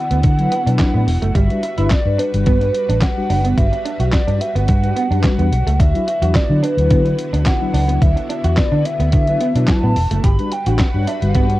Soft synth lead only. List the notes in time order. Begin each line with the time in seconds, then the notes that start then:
Already playing: F#5
0.80 F#5
1.36 E5
1.63 E5
1.91 D5
2.19 B4
3.02 F#5
3.58 E5
4.13 D5
4.41 E5
4.56 F#5
5.24 F#5
5.80 E5
6.08 E5
6.35 D5
6.63 B4
7.46 F#5
8.02 E5
8.30 E5
8.58 D5
8.85 E5
9.69 A5
10.25 B5
10.53 G5
10.80 F#5
11.08 E5
11.29 F5
11.35 F#5